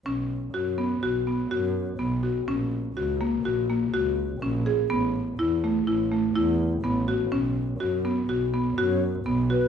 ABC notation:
X:1
M:5/4
L:1/8
Q:1/4=124
K:A
V:1 name="Flute"
z8 z2 | z8 z2 | z8 z2 | z8 z B |]
V:2 name="Marimba"
C2 F B, F B, F2 B, F | C2 F ^A, F A, F2 C G | B,2 E A, E A, E2 B, F | C2 F B, F B, F2 B, F |]
V:3 name="Double bass" clef=bass
B,,,2 F,,2 B,,,2 F,,2 B,,,2 | ^A,,,2 C,,2 A,,,2 C,,2 A,,,2 | A,,,2 E,,2 A,,,2 E,,2 A,,,2 | B,,,2 F,,2 B,,,2 F,,2 B,,,2 |]